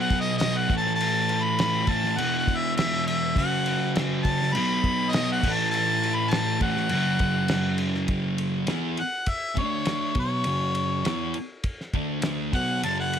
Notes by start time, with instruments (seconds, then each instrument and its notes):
Already playing: distorted electric guitar B2 F#3 B3
0.00 harmonica F#5
0.10 kick, crash
0.21 harmonica D#5
0.38 harmonica D#5, snare, crash
0.57 harmonica F#5
0.69 distorted electric guitar A2 E3, kick, crash
0.74 distorted electric guitar A3, harmonica A5
0.87 snare
0.95 harmonica A5
1.00 crash
1.29 crash
1.43 harmonica B5
1.59 snare, crash
1.87 distorted electric guitar E3 A3, harmonica A5, kick, crash
1.92 distorted electric guitar A2
2.04 snare
2.17 distorted electric guitar E2 B2, harmonica F#5, crash
2.22 distorted electric guitar E3
2.38 harmonica F#5
2.48 kick, crash
2.56 harmonica E5
2.76 harmonica E5, snare, crash
3.07 harmonica E5, crash
3.36 distorted electric guitar F#2 C#3, harmonica F#5, kick, crash
3.41 distorted electric guitar F#3
3.66 crash
3.96 snare, crash
4.22 harmonica A5, kick, crash
4.42 snare
4.54 distorted electric guitar B2 F#3, harmonica B5, crash
4.60 distorted electric guitar B3
4.84 kick, crash
5.11 harmonica D#5, snare, crash
5.32 harmonica F#5
5.42 distorted electric guitar A2 E3, kick, crash
5.48 distorted electric guitar A3
5.52 harmonica A5
5.71 harmonica A5, crash
6.03 crash
6.15 harmonica B5
6.30 harmonica A5, snare, crash
6.60 distorted electric guitar E3 A3, harmonica F#5, kick, crash
6.66 distorted electric guitar A2
6.77 snare
6.89 distorted electric guitar F#2, crash
6.93 distorted electric guitar C#3 F#3
7.19 kick, crash
7.48 snare, crash
7.78 crash
7.94 snare
8.08 distorted electric guitar F#2 C#3 F#3, kick, ride
8.38 ride
8.67 distorted electric guitar E3 B3 E4, snare, ride
8.97 harmonica F#5, ride
9.26 harmonica E5, kick, ride
9.55 distorted electric guitar D3 A3 D4, harmonica C#5, kick, ride
9.85 snare, ride
10.15 distorted electric guitar B2 F#3 B3, kick, ride
10.20 harmonica C#5
10.44 distorted electric guitar F#2 C#3 F#3, ride
10.75 ride
11.05 distorted electric guitar E3 B3 E4, snare, ride
11.34 ride
11.64 kick, ride
11.81 snare
11.93 distorted electric guitar D3 A3 D4, kick, ride
12.22 snare, ride
12.53 distorted electric guitar B2 F#3 B3, harmonica F#5, kick, ride
12.83 distorted electric guitar F#2 C#3 F#3, harmonica A5, ride
13.00 harmonica F#5
13.13 ride